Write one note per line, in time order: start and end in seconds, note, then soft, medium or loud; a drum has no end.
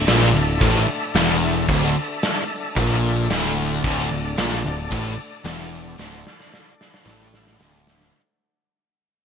0.00 8.10 D4 medium
0.00 8.09 A4 medium
0.00 3.79 E5 medium
0.08 0.33 A#1 medium
0.08 0.34 A#2 loud
0.08 snare loud
0.08 crash medium
0.34 0.59 D1 medium
0.34 0.56 D2 medium
0.34 snare soft
0.61 0.86 A1 loud
0.61 0.87 A2 loud
0.61 kick loud
0.61 crash medium
0.88 muted picked electric bass stroke soft
0.88 muted distorted electric guitar stroke medium
0.88 muted overdriven electric guitar stroke medium
1.15 1.65 E1 loud
1.15 1.68 E2 loud
1.15 snare loud
1.15 crash medium
1.69 1.94 D1 medium
1.69 1.95 D2 loud
1.69 kick loud
1.69 crash medium
2.23 snare loud
2.23 crash medium
2.76 3.26 A#1 loud
2.76 3.29 A#2 medium
2.76 kick loud
2.76 crash medium
3.30 3.80 D1 loud
3.30 3.83 D2 loud
3.30 snare loud
3.30 crash medium
3.83 4.09 D1 loud
3.83 4.10 D2 loud
3.83 8.09 D5 medium
3.83 kick loud
3.83 crash medium
4.11 4.36 D1 medium
4.11 4.32 D2 medium
4.38 4.63 A#1 medium
4.38 4.64 A#2 loud
4.38 snare loud
4.38 crash medium
4.64 4.90 D1 medium
4.64 4.86 D2 medium
4.64 snare soft
4.91 5.17 A1 loud
4.91 5.17 A2 loud
4.91 kick loud
4.91 crash medium
5.17 muted distorted electric guitar stroke medium
5.17 muted overdriven electric guitar stroke medium
5.44 5.95 E1 loud
5.44 5.97 E2 loud
5.44 snare loud
5.44 crash medium
5.98 6.24 D1 loud
5.98 6.24 D2 medium
5.98 snare medium
6.27 snare medium
6.40 snare medium
6.54 snare medium
6.81 snare medium
6.94 snare medium
7.06 7.56 A1 loud
7.06 7.59 A2 loud
7.06 snare loud
7.34 snare medium
7.47 snare medium
7.59 8.10 D1 loud
7.59 8.13 D2 loud
7.59 snare loud
7.87 snare loud
8.01 snare medium